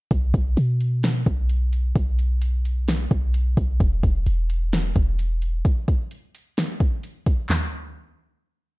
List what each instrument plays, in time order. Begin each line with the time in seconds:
0.11 808-style bass B1, kick, closed hi-hat
0.34 808-style bass B1, kick, closed hi-hat
0.57 808-style bass B2, closed hi-hat
0.81 closed hi-hat
1.03 snare, closed hi-hat
1.26 808-style bass B1, kick, closed hi-hat
1.49 closed hi-hat
1.73 closed hi-hat
1.96 808-style bass B1, kick, closed hi-hat
2.19 closed hi-hat
2.42 closed hi-hat
2.65 closed hi-hat
2.88 snare, closed hi-hat
3.11 808-style bass B1, kick, closed hi-hat
3.34 closed hi-hat
3.57 808-style bass B1, kick, closed hi-hat
3.80 808-style bass E1, kick, closed hi-hat
4.03 808-style bass E1, kick, closed hi-hat
4.26 808-style bass E1, closed hi-hat
4.50 closed hi-hat
4.73 snare, closed hi-hat
4.96 808-style bass E1, kick, closed hi-hat
5.19 closed hi-hat
5.42 closed hi-hat
5.65 kick, closed hi-hat
5.88 kick, closed hi-hat
6.11 closed hi-hat
6.35 closed hi-hat
6.57 snare, closed hi-hat
6.80 kick, closed hi-hat
7.03 closed hi-hat
7.26 kick, closed hi-hat
7.49 snare, clap, floor tom